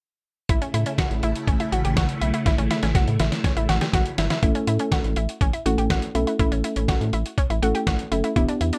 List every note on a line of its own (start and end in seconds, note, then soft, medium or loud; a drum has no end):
0.49 0.60 A1 loud
0.49 4.39 C#3 medium
0.49 4.39 A3 medium
0.49 0.58 E4 medium
0.49 4.39 E4 medium
0.49 kick loud
0.49 closed hi-hat medium
0.62 0.71 C#4 medium
0.62 closed hi-hat medium
0.74 0.85 A2 medium
0.74 0.83 E4 medium
0.74 closed hi-hat medium
0.86 0.95 C#4 medium
0.86 closed hi-hat medium
0.98 1.17 F#4 medium
0.98 kick loud
0.98 snare loud
0.98 closed hi-hat medium
1.11 1.22 A1 medium
1.11 closed hi-hat soft
1.23 1.34 A1 loud
1.23 1.41 E4 medium
1.23 closed hi-hat medium
1.36 closed hi-hat medium
1.47 1.58 A1 loud
1.47 1.57 C#4 medium
1.47 kick loud
1.47 closed hi-hat medium
1.60 1.69 E4 medium
1.60 closed hi-hat soft
1.72 1.83 A1 loud
1.72 1.81 F#4 medium
1.72 closed hi-hat medium
1.85 1.95 A1 loud
1.85 1.94 G4 medium
1.85 closed hi-hat soft
1.97 2.08 A1 loud
1.97 2.15 F#4 medium
1.97 kick loud
1.97 snare loud
1.97 closed hi-hat medium
2.09 closed hi-hat medium
2.21 2.32 B1 medium
2.21 2.30 E4 medium
2.21 closed hi-hat medium
2.34 2.43 E4 medium
2.34 closed hi-hat medium
2.46 2.57 A1 loud
2.46 2.55 E4 medium
2.46 kick loud
2.46 snare medium
2.46 closed hi-hat medium
2.58 2.69 A1 loud
2.58 2.67 C#4 medium
2.58 closed hi-hat medium
2.71 2.80 E4 medium
2.71 snare medium
2.71 closed hi-hat medium
2.83 2.94 A1 loud
2.83 2.92 C#4 medium
2.83 snare medium
2.83 closed hi-hat medium
2.95 3.06 A1 loud
2.95 3.13 F#4 medium
2.95 kick loud
2.95 snare medium
2.95 closed hi-hat medium
3.08 3.18 A2 loud
3.08 closed hi-hat soft
3.20 3.31 A1 loud
3.20 3.38 E4 medium
3.20 snare medium
3.20 closed hi-hat medium
3.32 snare medium
3.32 closed hi-hat medium
3.44 3.53 C#4 medium
3.44 kick loud
3.44 snare medium
3.44 closed hi-hat medium
3.57 3.67 A1 loud
3.57 3.66 E4 medium
3.57 closed hi-hat medium
3.69 3.80 A1 loud
3.69 3.78 F#4 medium
3.69 snare medium
3.69 closed hi-hat medium
3.81 3.90 G4 medium
3.81 snare medium
3.81 closed hi-hat soft
3.93 4.04 A1 loud
3.93 4.12 F#4 medium
3.93 kick loud
3.93 snare medium
3.93 closed hi-hat medium
4.06 closed hi-hat medium
4.18 4.29 G1 medium
4.18 4.27 E4 medium
4.18 snare medium
4.18 closed hi-hat medium
4.30 4.39 E4 medium
4.30 snare medium
4.30 closed hi-hat medium
4.43 4.54 A1 loud
4.43 5.17 A3 medium
4.43 5.17 C#4 medium
4.43 5.17 E4 medium
4.43 4.52 E4 medium
4.43 5.17 A4 medium
4.43 kick loud
4.43 closed hi-hat medium
4.55 4.64 C#4 medium
4.55 closed hi-hat medium
4.67 4.78 A2 loud
4.67 4.76 E4 medium
4.67 closed hi-hat medium
4.79 4.89 C#4 medium
4.79 closed hi-hat medium
4.92 5.10 F#4 medium
4.92 kick loud
4.92 snare loud
4.92 closed hi-hat medium
5.04 5.15 A1 loud
5.04 closed hi-hat soft
5.16 5.27 A1 loud
5.16 5.35 E4 medium
5.16 closed hi-hat medium
5.29 closed hi-hat medium
5.41 5.52 A1 loud
5.41 5.50 C#4 medium
5.41 kick loud
5.41 closed hi-hat medium
5.53 5.62 E4 medium
5.53 closed hi-hat soft
5.66 5.77 A1 loud
5.66 6.03 A3 medium
5.66 6.03 C#4 medium
5.66 6.03 E4 medium
5.66 5.75 F#4 medium
5.66 6.03 A4 medium
5.66 closed hi-hat medium
5.78 5.89 A1 medium
5.78 5.87 G4 medium
5.78 closed hi-hat soft
5.90 6.01 A1 medium
5.90 6.08 F#4 medium
5.90 kick loud
5.90 snare loud
5.90 closed hi-hat medium
6.02 closed hi-hat medium
6.15 6.26 B1 medium
6.15 6.33 A3 medium
6.15 6.33 C#4 medium
6.15 6.33 E4 medium
6.15 6.24 E4 medium
6.15 6.33 A4 medium
6.15 closed hi-hat medium
6.27 6.36 E4 medium
6.27 closed hi-hat medium
6.39 6.50 A1 loud
6.39 7.14 A3 medium
6.39 7.14 C#4 medium
6.39 7.14 E4 medium
6.39 6.49 E4 medium
6.39 7.14 A4 medium
6.39 kick loud
6.39 closed hi-hat medium
6.52 6.63 A1 loud
6.52 6.61 C#4 medium
6.52 closed hi-hat medium
6.64 6.73 E4 medium
6.64 closed hi-hat medium
6.76 6.87 A1 medium
6.76 6.85 C#4 medium
6.76 closed hi-hat medium
6.88 6.99 A1 loud
6.88 7.07 F#4 medium
6.88 kick loud
6.88 snare loud
6.88 closed hi-hat medium
7.01 7.12 A2 loud
7.01 closed hi-hat soft
7.13 7.24 A1 loud
7.13 7.31 E4 medium
7.13 closed hi-hat medium
7.26 closed hi-hat medium
7.38 7.47 C#4 medium
7.38 kick loud
7.38 closed hi-hat medium
7.50 7.61 A1 loud
7.50 7.59 E4 medium
7.50 closed hi-hat soft
7.62 7.73 A1 loud
7.62 8.00 A3 medium
7.62 8.00 C#4 medium
7.62 8.00 E4 medium
7.62 7.71 F#4 medium
7.62 8.00 A4 medium
7.62 closed hi-hat medium
7.75 7.84 G4 medium
7.75 closed hi-hat soft
7.87 7.98 A1 loud
7.87 8.05 F#4 medium
7.87 kick loud
7.87 snare loud
7.87 closed hi-hat medium
7.99 closed hi-hat medium
8.12 8.22 F#1 medium
8.12 8.30 A3 medium
8.12 8.30 C#4 medium
8.12 8.30 E4 medium
8.12 8.21 E4 medium
8.12 8.30 A4 medium
8.12 closed hi-hat medium
8.24 8.33 E4 medium
8.24 closed hi-hat medium
8.36 8.47 E1 loud
8.36 8.78 B3 medium
8.36 8.78 D4 medium
8.36 8.45 E4 medium
8.36 8.78 E4 medium
8.36 8.78 G4 medium
8.36 kick loud
8.36 closed hi-hat medium
8.49 8.58 D4 medium
8.49 closed hi-hat medium
8.61 8.72 E2 medium
8.61 8.70 E4 medium
8.61 closed hi-hat medium
8.73 8.78 D4 medium
8.73 closed hi-hat medium